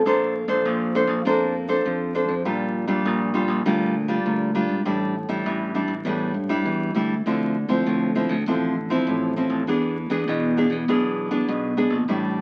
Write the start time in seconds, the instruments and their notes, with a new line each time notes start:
0.05 fingered electric bass A#1, nylon-string guitar A#3 D4 A4 C5
0.48 fingered electric bass A#1, nylon-string guitar D4 A4 C5
0.65 fingered electric bass A#1, nylon-string guitar F3
0.95 nylon-string guitar D4 A4 C5
1.07 fingered electric bass A#1
1.25 fingered electric bass F2, nylon-string guitar A#3 D4 A4 C5
1.68 nylon-string guitar D4 A4 C5
1.85 fingered electric bass F2, nylon-string guitar F3
2.15 nylon-string guitar D4 A4 C5
2.28 fingered electric bass F2
2.45 fingered electric bass A#1, nylon-string guitar A#2 G3 D4 F4
2.87 fingered electric bass A#1, nylon-string guitar G3 D4 F4
3.05 fingered electric bass A#1, nylon-string guitar A#2
3.34 nylon-string guitar G3 D4 F4
3.48 fingered electric bass A#1
3.65 fingered electric bass D2, nylon-string guitar A#2 G3 D4 F4
4.08 nylon-string guitar G3 D4 F4
4.26 fingered electric bass D2, nylon-string guitar A#2
4.55 nylon-string guitar G3 D4 F4
4.69 fingered electric bass G#1
4.85 fingered electric bass A1, nylon-string guitar A2 G3 D4 E4
5.29 fingered electric bass A1, nylon-string guitar G3 D4 E4
5.46 fingered electric bass A1, nylon-string guitar E3
5.75 nylon-string guitar G3 D4 E4
5.88 fingered electric bass A1
6.05 fingered electric bass E2, nylon-string guitar A2 G3 D4 E4
6.34 fingered electric bass G2
6.49 nylon-string guitar G3 D4 E4
6.65 fingered electric bass E2, nylon-string guitar E3
6.95 fingered electric bass D2, nylon-string guitar G3 D4 E4
7.26 fingered electric bass D2, nylon-string guitar D3 F3 C4 E4
7.68 fingered electric bass D2, nylon-string guitar F3 C4 E4
7.86 fingered electric bass D2, nylon-string guitar A2
8.15 nylon-string guitar F3 C4 E4
8.29 fingered electric bass D2
8.46 fingered electric bass A1, nylon-string guitar D3 F3 C4 E4
8.90 nylon-string guitar F3 C4 E4
9.07 fingered electric bass A1, nylon-string guitar A2
9.36 nylon-string guitar F3 C4 E4
9.50 fingered electric bass A1
9.67 fingered electric bass E2, nylon-string guitar E3 B3 D4 G#4
10.10 fingered electric bass E2, nylon-string guitar B3 D4 G#4
10.28 fingered electric bass E2, nylon-string guitar B2
10.57 nylon-string guitar B3 D4 G#4
10.70 fingered electric bass E2
10.88 fingered electric bass B1, nylon-string guitar E3 B3 D4 G#4
11.31 nylon-string guitar B3 D4 G#4
11.48 fingered electric bass B1, nylon-string guitar B2
11.77 nylon-string guitar B3 D4 G#4
11.90 fingered electric bass A#1
12.08 fingered electric bass A1, nylon-string guitar A2 G3 D4 E4